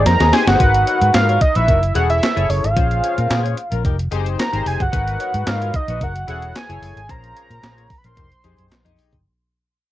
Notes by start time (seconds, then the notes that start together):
Already playing: D#4 G4 G#4 C5
0.05 F2 A#5, snare, closed hi-hat
0.20 D#2 C4 D#4 G#4, snare, closed hi-hat
0.32 D#4 G4 G#4 C5 G#5, snare, open hi-hat
0.47 G1 F#5, snare, closed hi-hat
0.60 G#1 D#4 F#4 A#4 B4, kick, closed hi-hat
0.75 closed hi-hat
0.87 F#4 A#4 C#5, closed hi-hat
1.01 G#2 D#4 F#4 B4, closed hi-hat
1.14 G#2 D#4 F#4 A#4 F5, snare, clap, closed hi-hat
1.28 F#4 A#4 C#5, closed hi-hat
1.41 D#5, kick, closed hi-hat
1.55 A#1 D#4 F#4 B4 E5, closed hi-hat
1.68 F#1 D#4 F#4 A#4, kick, closed hi-hat
1.83 closed hi-hat
1.94 E1 C#4 E4 G#4 A4 C#5 F#5, closed hi-hat
2.10 E5, closed hi-hat
2.23 snare, clap, closed hi-hat
2.36 F#1 E4 G#4 A4 C#5, closed hi-hat
2.49 F#1 C#5, open hi-hat
2.64 G#1 F5, closed hi-hat
2.76 A#1 C#4 F4 G#4 C5, kick, closed hi-hat
2.91 closed hi-hat
3.04 F4 G#4 C#5, closed hi-hat
3.17 A#2 C#4 F4 A#4, closed hi-hat
3.30 A#2 C#4 F4 G#4, snare, clap, closed hi-hat
3.43 F4 G#4 C#5, closed hi-hat
3.57 closed hi-hat
3.71 A#1 C#4 F4 A#4, closed hi-hat
3.84 F1 D#4 G4 A#4, kick, closed hi-hat
3.99 closed hi-hat
4.11 F#1 C4 D#4 G4 G#4 C5, closed hi-hat
4.26 closed hi-hat
4.39 A#5, snare, clap, closed hi-hat
4.53 G#1 D#4 G4 G#4 C5, closed hi-hat
4.66 F1 G#5, open hi-hat
4.80 G1 F#5, kick, closed hi-hat
4.92 G#1 D#4 F#4 A#4 B4, kick, closed hi-hat
5.08 closed hi-hat
5.20 F#4 A#4 C#5, closed hi-hat
5.34 G#2 D#4 F#4 B4, closed hi-hat
5.47 G#2 D#4 F#4 A#4 F5, snare, clap, closed hi-hat
5.61 F#4 A#4 C#5, closed hi-hat
5.74 D#5, kick, closed hi-hat
5.88 A#1 D#4 F#4 B4, closed hi-hat
6.01 F#1 D#4 F#4 A#4 F#5, kick, closed hi-hat
6.16 closed hi-hat
6.27 E1 C#4 E4 G#4 A4 C#5 F#5, closed hi-hat
6.42 closed hi-hat
6.55 G#5, snare, clap, closed hi-hat
6.69 F#1 E4 G#4 A4 C#5, closed hi-hat
6.82 F#1 G#5, open hi-hat
6.96 G#1, closed hi-hat
7.09 A#1 C#4 F4 G#4 C5 A#5, kick, closed hi-hat
7.24 closed hi-hat
7.36 F4 G#4 C#5, closed hi-hat
7.49 A#2 C#4 F4 A#4, closed hi-hat
7.62 A#2 C#4 F4 G#4, snare, clap, closed hi-hat
7.77 F4 G#4 C#5, closed hi-hat
7.90 kick, open hi-hat
7.98 B5
8.04 A#1 C#4 F4 A#4 C6, closed hi-hat
8.17 F1 D#4 G4 A#4, kick, closed hi-hat
8.32 closed hi-hat
8.44 F2 C4 D#4 G4 G#4 C5, closed hi-hat
8.58 F#2, closed hi-hat
8.71 snare, clap, closed hi-hat
8.85 F2 D#4 G4 G#4 D#5, closed hi-hat
8.99 open hi-hat
9.13 G1, kick, closed hi-hat